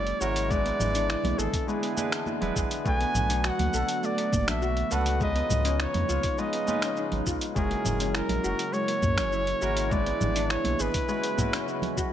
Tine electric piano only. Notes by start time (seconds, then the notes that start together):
Already playing: C#3 G#3 E4 F#4 A#4
0.21 G#3 C#4 E4 F#4 A#4
0.49 G#3 B3 D4 E4 B4
1.67 G#3 B3 D4 E4 B4
1.97 G#3 B3 D4 E4 B4
2.41 G#3 B3 D4 E4 B4
2.84 A3 B3 D4 F#4 B4
4.91 A3 B3 D4 F#4 B4
5.19 G#3 C#4 D#4 F4 B4
6.38 G#3 C#4 D#4 F4 B4
6.67 G#3 C#4 D#4 F4 B4
7.55 G#3 C#4 E4 F#4 A#4
9.61 G#3 C#4 E4 F#4 A#4
9.89 G#3 B3 D4 E4 B4
11.08 G#3 C#4 E4 F#4 B4
11.37 G#3 C#4 E4 F#4 B4